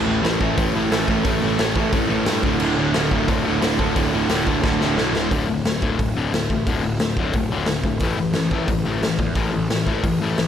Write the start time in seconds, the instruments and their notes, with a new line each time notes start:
Already playing: picked electric bass A1
0.06 distorted electric guitar A2 E3 A3
0.22 picked electric bass A1, distorted electric guitar A2 E3 A3, snare, open hi-hat
0.40 picked electric bass A1, distorted electric guitar A2 E3 A3, kick
0.58 picked electric bass A1, distorted electric guitar A2 E3 A3, kick, open hi-hat
0.75 picked electric bass A1, distorted electric guitar A2 E3 A3
0.91 picked electric bass A1, distorted electric guitar A2 E3 A3, snare, open hi-hat
1.08 picked electric bass A1, distorted electric guitar A2 E3 A3, kick
1.24 picked electric bass A1, distorted electric guitar A2 E3 A3, kick, open hi-hat
1.42 picked electric bass A1, distorted electric guitar A2 E3 A3
1.58 picked electric bass A1, distorted electric guitar A2 E3 A3, snare, open hi-hat
1.75 picked electric bass A1, distorted electric guitar A2 E3 A3, kick
1.92 picked electric bass A1, distorted electric guitar A2 E3 A3, kick, open hi-hat
2.08 picked electric bass A1, distorted electric guitar A2 E3 A3
2.26 picked electric bass G2, distorted electric guitar A2 E3 A3, snare, open hi-hat
2.43 picked electric bass D1, distorted electric guitar D2 A2 D3, kick
2.60 picked electric bass D1, distorted electric guitar D2 A2 D3, crash
2.76 distorted electric guitar D2 A2 D3
2.93 picked electric bass D1, distorted electric guitar D2 A2 D3, snare, open hi-hat
3.11 picked electric bass D1, distorted electric guitar D2 A2 D3, kick
3.28 picked electric bass D1, distorted electric guitar D2 A2 D3, kick, open hi-hat
3.44 picked electric bass D1, distorted electric guitar D2 A2 D3
3.61 picked electric bass D1, distorted electric guitar D2 A2 D3, snare, open hi-hat
3.79 picked electric bass D1, distorted electric guitar D2 A2 D3, kick
3.95 picked electric bass D1, distorted electric guitar D2 A2 D3, kick, open hi-hat
4.13 picked electric bass D1, distorted electric guitar D2 A2 D3
4.29 picked electric bass D1, distorted electric guitar D2 A2 D3, snare, open hi-hat
4.47 picked electric bass D1, distorted electric guitar D2 A2 D3, kick
4.62 picked electric bass D1, distorted electric guitar D2 A2 D3, kick, snare
4.79 picked electric bass D1, distorted electric guitar D2 A2 D3, snare
4.97 picked electric bass B1, distorted electric guitar D2 A2 D3, snare
5.13 picked electric bass D1, distorted electric guitar D2 A2 D3, snare
5.31 picked electric bass D1, distorted electric guitar D2 A2 D3, kick, open hi-hat
5.47 picked electric bass D1, distorted electric guitar D2 A2
5.64 picked electric bass D1, distorted electric guitar D2 A2, snare, open hi-hat
5.82 picked electric bass D1, distorted electric guitar D2 A2 D3, kick
5.99 picked electric bass D1, distorted electric guitar D2 A2, kick, open hi-hat
6.16 picked electric bass D1, distorted electric guitar D2 A2 D3
6.33 picked electric bass D1, distorted electric guitar D2 A2, snare, open hi-hat
6.50 picked electric bass A1, distorted electric guitar D2 A2, kick
6.67 picked electric bass D1, distorted electric guitar D2 A2 D3, kick, open hi-hat
6.83 picked electric bass D1, distorted electric guitar D2 A2
7.00 picked electric bass D1, distorted electric guitar D2 A2, snare, open hi-hat
7.17 distorted electric guitar D2 A2 D3, kick
7.33 picked electric bass D1, distorted electric guitar D2 A2, kick, open hi-hat
7.50 picked electric bass D1, distorted electric guitar D2 A2 D3
7.66 picked electric bass D1, distorted electric guitar D2 A2, snare, open hi-hat
7.83 picked electric bass D1, distorted electric guitar D2 A2, kick
8.00 picked electric bass A1, distorted electric guitar A2 E3 A3, kick, open hi-hat
8.18 picked electric bass A1, distorted electric guitar A2 E3
8.33 picked electric bass A1, distorted electric guitar A2 E3, snare, open hi-hat
8.51 picked electric bass A1, distorted electric guitar A2 E3 A3, kick
8.68 picked electric bass A1, distorted electric guitar A2 E3, kick, open hi-hat
8.85 picked electric bass A1, distorted electric guitar A2 E3 A3
9.02 picked electric bass A1, distorted electric guitar A2 E3, snare, open hi-hat
9.19 picked electric bass E2, distorted electric guitar A2 E3, kick
9.35 picked electric bass A1, distorted electric guitar A2 E3 A3, kick, open hi-hat
9.53 picked electric bass A1, distorted electric guitar A2 E3
9.70 picked electric bass A1, distorted electric guitar A2 E3, snare, open hi-hat
9.87 distorted electric guitar A2 E3 A3, kick
10.04 picked electric bass A1, distorted electric guitar A2 E3, kick, open hi-hat
10.20 picked electric bass A1, distorted electric guitar A2 E3 A3
10.37 picked electric bass A1, distorted electric guitar A2 E3, snare, open hi-hat